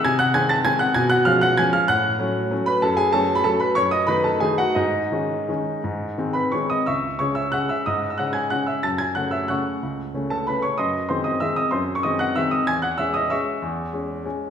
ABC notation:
X:1
M:3/4
L:1/16
Q:1/4=188
K:C#m
V:1 name="Grand piano"
[gg']2 [ff']2 [gg']2 [aa']2 [gg']2 [ff']2 | [gg']2 [ff']2 [^e^e']2 [ff']2 [gg']2 [ee']2 | [ff']8- [ff']2 [Bb]2 | [Aa]2 [Gg]2 [Aa]3 b [Aa]2 [Bb]2 |
[cc']2 [dd']2 [Bb]2 [Aa]2 [Gg]2 [Ff]2 | [Dd]12- | [Dd]6 [Bb]2 [cc']2 [dd']2 | [ec'e']4 [cc']2 [ee']2 [ff']2 [ee']2 |
[dd']3 e' [ff']2 [gg']2 [ff']2 [ee']2 | [aa']2 [gg']2 [ff']2 [ee']2 [fc'f']4- | [fc'f']4 z2 [Aa]2 [Bb]2 [cc']2 | [d^bd']4 [^Bb]2 [dd']2 [ee']2 [dd']2 |
[^B^b]3 c' [dd']2 [ff']2 [ee']2 [dd']2 | [gg']2 [ff']2 [ee']2 [dd']2 [ec'e']4- | [ec'e']4 z8 |]
V:2 name="Grand piano" clef=bass
^B,,4 [D,G,^B,]4 [D,G,B,]4 | B,,4 [^E,G,C]4 [E,G,C]4 | A,,4 [F,A,C]4 [F,A,C]4 | F,,4 [F,A,C]4 [F,A,C]4 |
F,,4 [D,A,D]4 [D,A,D]4 | G,,4 [D,G,C]4 [D,G,C]4 | G,,4 [D,G,^B,]4 [D,G,B,]4 | C,,4 [C,G,C]4 [C,G,C]4 |
G,,4 [C,G,C]4 [C,G,C]4 | F,,4 [C,A,C]4 [C,A,C]4 | C,,4 [C,A,C]4 [C,A,C]4 | F,,4 [D,G,^B,]4 [D,G,B,]4 |
F,,4 [D,G,^B,]4 [D,G,B,]4 | E,,4 [G,C]4 [G,C]4 | E,,4 [G,C]4 [G,C]4 |]